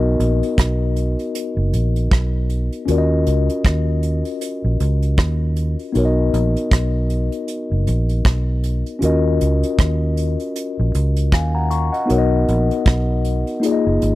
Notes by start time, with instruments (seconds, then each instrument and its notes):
Already playing: fingered electric bass B1, tine electric piano B3 D#4 F#4 A#4 D#5
0.19 fingered electric bass A#1, closed hi-hat
0.43 closed hi-hat
0.58 fingered electric bass B1, kick, cross-stick, closed hi-hat
0.96 closed hi-hat
1.19 closed hi-hat
1.35 closed hi-hat
1.57 fingered electric bass F#1
1.73 fingered electric bass A#1, closed hi-hat
1.96 closed hi-hat
2.11 fingered electric bass B1, kick, cross-stick, closed hi-hat
2.50 closed hi-hat
2.72 closed hi-hat
2.86 fingered electric bass D#2, tine electric piano C#4 F4 F#4, closed hi-hat
2.90 tine electric piano A#4 D5
2.98 tine electric piano D#5
3.26 fingered electric bass C#2, closed hi-hat
3.49 closed hi-hat
3.65 fingered electric bass D#2, kick, cross-stick, closed hi-hat
4.03 closed hi-hat
4.25 closed hi-hat
4.41 closed hi-hat
4.64 fingered electric bass A#1
4.80 fingered electric bass C#2, closed hi-hat
5.02 closed hi-hat
5.18 fingered electric bass D#2, kick, cross-stick, closed hi-hat
5.56 closed hi-hat
5.79 closed hi-hat
5.92 fingered electric bass B1, tine electric piano B3 D#4 F#4, closed hi-hat
5.97 tine electric piano A#4 C#5
6.05 tine electric piano D#5
6.34 fingered electric bass A#1, closed hi-hat
6.56 closed hi-hat
6.71 fingered electric bass B1, kick, cross-stick, closed hi-hat
7.10 closed hi-hat
7.32 closed hi-hat
7.48 closed hi-hat
7.72 fingered electric bass F#1
7.87 fingered electric bass A#1, closed hi-hat
8.09 closed hi-hat
8.25 fingered electric bass B1, kick, cross-stick, closed hi-hat
8.64 closed hi-hat
8.86 closed hi-hat
8.99 fingered electric bass D#2, tine electric piano C#4 F4 F#4, closed hi-hat
9.04 tine electric piano A#4 D#5
9.41 fingered electric bass C#2, closed hi-hat
9.63 closed hi-hat
9.79 fingered electric bass D#2, kick, cross-stick, closed hi-hat
10.17 closed hi-hat
10.40 closed hi-hat
10.56 closed hi-hat
10.79 fingered electric bass A#1
10.95 fingered electric bass C#2, closed hi-hat
11.16 closed hi-hat
11.32 fingered electric bass D#2, tine electric piano F5 G#5, kick, cross-stick, closed hi-hat
11.55 tine electric piano F#5 A#5
11.71 tine electric piano A#5 C#6, closed hi-hat
11.93 tine electric piano D#5 F#5, closed hi-hat
12.06 tine electric piano B3 D#4 F#4, closed hi-hat
12.10 fingered electric bass B1, tine electric piano A#4 C#5
12.18 tine electric piano D#5
12.48 fingered electric bass A#1, closed hi-hat
12.71 closed hi-hat
12.86 fingered electric bass B1, kick, cross-stick, closed hi-hat
13.24 closed hi-hat
13.47 closed hi-hat
13.60 tine electric piano A#3 D#4 F4, closed hi-hat
13.65 tine electric piano G#4 D5
13.72 tine electric piano D#5
13.87 fingered electric bass F#1
14.02 fingered electric bass G#1, closed hi-hat